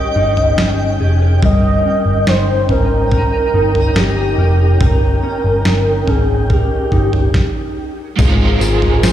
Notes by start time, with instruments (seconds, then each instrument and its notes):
Already playing: clean electric guitar G3 C#4 D#4 A#4, tonewheel organ C#4 D#4 G5, synth texture G4, soft synth lead D#5
0.16 picked electric bass G1, clean electric guitar D#4
0.37 floor tom
0.57 picked electric bass G1, clean electric guitar C#4, snare
1.00 picked electric bass F1, clean electric guitar G#4
1.22 clean electric guitar A#4
1.42 picked electric bass G1, clean electric guitar G3 A#4, soft synth lead D#5, kick, floor tom
1.86 clean electric guitar C#4
2.06 picked electric bass G1
2.27 picked electric bass G1, synth texture D#4, clean electric guitar D#4, soft synth lead C5, snare
2.69 picked electric bass G#1, clean electric guitar C#4, soft synth lead A#4, floor tom
3.11 clean electric guitar A#4, soft synth lead A#4, kick, floor tom
3.54 picked electric bass G1, clean electric guitar D#4
3.75 floor tom
3.96 picked electric bass G1, clean electric guitar C#4, soft synth lead G4, snare
4.38 picked electric bass F1, clean electric guitar A#4
4.81 picked electric bass G1, clean electric guitar A#4, soft synth lead A#4, kick, floor tom
5.23 clean electric guitar C#4
5.44 picked electric bass G1
5.65 picked electric bass G1, clean electric guitar D#4, snare
6.07 picked electric bass G#1, clean electric guitar C#4, soft synth lead G#4, floor tom
6.49 soft synth lead G4, clean electric guitar A#4, kick, floor tom
6.92 picked electric bass G1, clean electric guitar D#4, kick
7.13 floor tom
7.34 kick, snare
8.16 picked electric bass G#1, overdriven electric guitar G#2 D#3 F3, clean electric guitar G#3, tonewheel organ G#3 D#4 F4 A#4 C5, soft synth lead G#4, kick, floor tom, tambourine
8.22 overdriven electric guitar G#3 C4 F4
8.60 picked electric bass G#1, clean electric guitar F4, tambourine
8.82 floor tom
9.03 picked electric bass G#1, synth texture F4, clean electric guitar C5, snare, tambourine